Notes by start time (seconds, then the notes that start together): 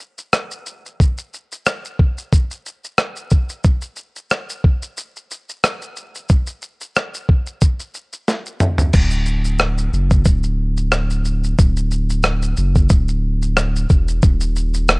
0.00 shaker
0.18 shaker
0.33 cross-stick, shaker
0.51 shaker
0.66 shaker
0.86 shaker
1.00 kick, shaker
1.18 shaker
1.34 shaker
1.52 shaker
1.66 cross-stick, shaker
1.85 shaker
1.99 kick
2.18 shaker
2.33 kick, shaker
2.51 shaker
2.66 shaker
2.84 shaker
2.98 cross-stick, shaker
3.16 shaker
3.30 kick, shaker
3.50 shaker
3.64 kick, shaker
3.82 shaker
3.96 shaker
4.16 shaker
4.31 cross-stick, shaker
4.50 shaker
4.64 kick
4.83 shaker
4.98 shaker
5.17 shaker
5.31 shaker
5.49 shaker
5.64 cross-stick, shaker
5.82 shaker
5.96 shaker
6.15 shaker
6.29 kick, shaker
6.47 shaker
6.62 shaker
6.81 shaker
6.96 cross-stick, shaker
7.14 shaker
7.29 kick
7.47 shaker
7.61 kick, shaker
7.79 shaker
7.94 shaker
8.13 shaker
8.28 snare, shaker
8.46 shaker
8.60 mid tom, shaker
8.78 floor tom, shaker
8.93 D1, kick, crash, shaker
9.11 shaker
9.26 shaker
9.45 shaker
9.59 cross-stick, shaker
9.78 shaker
9.93 F#1, shaker
10.11 kick, shaker
10.25 D1, kick, shaker
10.44 shaker
10.77 shaker
10.92 cross-stick, shaker
11.10 shaker
11.25 shaker
11.44 shaker
11.58 D1, kick, shaker
11.77 shaker
11.91 shaker
12.10 shaker
12.23 cross-stick, shaker
12.42 shaker
12.57 F#1, shaker
12.75 kick, shaker
12.90 D1, kick, shaker
13.08 shaker
13.42 shaker
13.57 cross-stick, shaker
13.76 shaker
13.90 E1, kick, shaker
14.08 shaker
14.22 D#1, kick, shaker
14.41 shaker
14.56 shaker
14.74 shaker
14.88 cross-stick, shaker